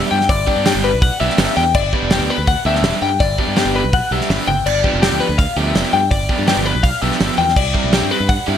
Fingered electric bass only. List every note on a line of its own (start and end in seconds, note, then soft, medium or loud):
0.11 0.27 G2 medium
0.29 0.45 G1 loud
0.56 0.72 G2 medium
0.75 0.91 G1 medium
0.94 1.09 B1 medium
1.21 1.29 B1 loud
1.38 1.46 G1 medium
1.57 1.73 E2 medium
1.75 1.91 G1 loud
2.02 2.18 E1 medium
2.20 2.28 D2 medium
2.38 2.54 D2 medium
2.65 2.81 D2 loud
2.83 2.91 E1 loud
3.02 3.18 G2 medium
3.20 3.36 G1 loud
3.47 3.63 G2 medium
3.65 3.81 G1 medium
3.84 4.00 B1 medium
4.11 4.19 B1 loud
4.30 4.38 G1 medium
4.48 4.63 G1 loud
4.66 4.82 G1 loud
4.93 5.09 F1 medium
5.11 5.19 D2 medium
5.29 5.45 D2 loud
5.56 5.72 D2 medium
5.75 5.83 F1 loud
5.93 6.09 G2 medium
6.11 6.27 G1 loud
6.38 6.54 G2 medium
6.57 6.72 G1 medium
6.75 6.91 B1 loud
7.02 7.10 B1 loud
7.21 7.28 G1 loud
7.38 7.54 E2 loud
7.56 7.72 C2 loud
7.84 8.00 B1 medium
8.02 8.10 G2 medium
8.20 8.36 G2 medium
8.48 8.58 G2 loud